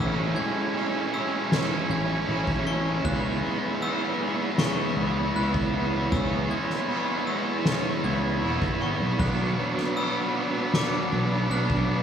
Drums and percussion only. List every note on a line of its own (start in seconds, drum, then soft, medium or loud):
0.37 crash medium
0.75 crash medium
1.13 crash medium
1.52 snare loud
1.52 crash loud
1.90 crash medium
2.28 crash loud
2.47 kick medium
2.66 crash medium
3.05 kick loud
3.05 crash medium
3.43 crash medium
3.82 crash medium
4.20 crash medium
4.58 snare loud
4.58 crash medium
4.97 crash medium
5.35 crash medium
5.54 kick medium
5.73 crash medium
6.12 kick loud
6.12 crash medium
6.51 crash medium
6.70 snare soft
6.89 crash loud
7.27 crash medium
7.65 snare loud
7.65 crash loud
8.04 crash medium
8.42 crash medium
8.62 kick medium
8.81 crash medium
9.19 kick loud
9.19 crash medium
9.58 crash medium
9.77 snare soft
9.97 crash medium
10.35 crash medium
10.74 snare loud
10.74 crash medium
11.12 crash medium
11.50 crash medium
11.70 kick medium
11.89 crash medium